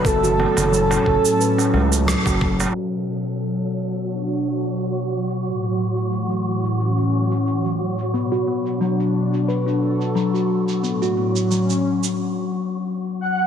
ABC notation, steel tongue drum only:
X:1
M:4/4
L:1/16
Q:"Swing 16ths" 1/4=89
K:Bm
V:1 name="Steel tongue drum"
B, F B, z F, z3 B C3 F, F3 | z16 | z16 | B, F B, z F, z3 B D3 F, F3 |
B, F B, z F, z8 z3 |]